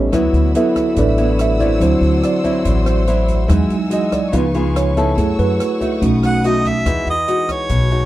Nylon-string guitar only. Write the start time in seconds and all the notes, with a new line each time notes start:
Already playing: A2
0.12 D3 F#3 B3 E4
0.55 F#3 B3 E4
0.96 A2
1.18 F#3 B3 E4
1.60 F#3 C4 E4
1.81 D3
2.44 F#3 C4 E4
2.65 A2
3.07 F#3 C4 E4
3.48 E3 G#3 D#4 F#4
3.90 G#3 D#4 F#4
4.32 C#3 G#3 B3 F4
4.54 G#3 B3 F4
4.97 C#4 E4 A4
5.17 F#3
5.81 A3 D#4 F#4
6.02 B2
6.45 A3 D#4 F#4
6.86 E3 G#3 D#4 F#4
7.28 G#3 D#4 F#4
7.70 B2
7.91 G#3 D#4 F#4